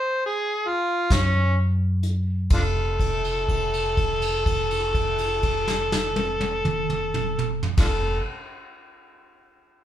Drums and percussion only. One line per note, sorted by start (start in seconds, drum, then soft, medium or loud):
1.10 kick medium
1.10 snare loud
1.10 closed hi-hat medium
2.03 closed hi-hat medium
2.50 kick medium
2.50 crash medium
3.00 kick medium
3.00 crash soft
3.24 crash soft
3.49 kick medium
3.49 crash soft
3.73 crash soft
3.97 kick medium
3.97 crash soft
4.22 crash soft
4.46 kick medium
4.46 crash soft
4.71 crash soft
4.94 kick medium
4.94 crash soft
5.18 crash medium
5.43 kick medium
5.43 crash soft
5.68 snare medium
5.92 snare medium
6.16 high tom medium
6.41 high tom medium
6.65 mid tom medium
6.90 mid tom medium
7.14 mid tom medium
7.39 mid tom medium
7.63 floor tom medium
7.77 kick loud
7.77 snare loud
7.77 crash loud